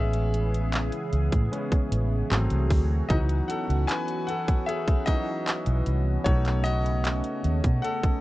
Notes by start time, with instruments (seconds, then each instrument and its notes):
Already playing: fingered electric bass A1, analog synth pad C#3 E3 B3 G#4, grand piano G#3 B3 C#4 G#4 E5
0.13 closed hi-hat
0.34 closed hi-hat
0.54 closed hi-hat
0.73 clap, closed hi-hat
0.92 closed hi-hat
1.13 fingered electric bass C#2, closed hi-hat
1.32 fingered electric bass A2, kick, closed hi-hat
1.52 grand piano G#3 B3 C#4, closed hi-hat
1.72 muted fingered electric bass stroke, kick, closed hi-hat
1.92 fingered electric bass A1, closed hi-hat
2.31 fingered electric bass G#1, analog synth pad C3 F#4 G#4, grand piano F#3 A3 C4, clap, closed hi-hat
2.50 fingered electric bass C2, closed hi-hat
2.70 fingered electric bass D2, kick, open hi-hat
3.09 fingered electric bass C#2, grand piano E3 F#3 B3 D#4 F#4 D#5, analog synth pad E3 B3 C#4, kick, closed hi-hat
3.29 closed hi-hat
3.48 grand piano A4 F#5, closed hi-hat
3.70 fingered electric bass C#2, closed hi-hat
3.87 grand piano B4 G#5, clap, closed hi-hat
4.08 closed hi-hat
4.27 grand piano A4 F#5, closed hi-hat
4.48 kick, closed hi-hat
4.66 grand piano G#4 E5, closed hi-hat
4.88 kick, closed hi-hat
5.06 grand piano E3 F#3 B3 D#4 F#4 D#5, kick, closed hi-hat
5.48 clap, closed hi-hat
5.66 fingered electric bass B1, closed hi-hat
5.86 fingered electric bass C2, closed hi-hat
6.24 fingered electric bass B1, analog synth pad C#3 A3, grand piano A3 C#4 D#4 F#4 C#5, kick, closed hi-hat
6.45 clap, closed hi-hat
6.64 grand piano F#4 D#5, closed hi-hat
6.86 closed hi-hat
7.05 clap, closed hi-hat
7.24 closed hi-hat
7.44 fingered electric bass D#2, closed hi-hat
7.64 fingered electric bass B2, kick, closed hi-hat
7.82 grand piano A4 F#5, closed hi-hat
8.03 muted fingered electric bass stroke, kick, closed hi-hat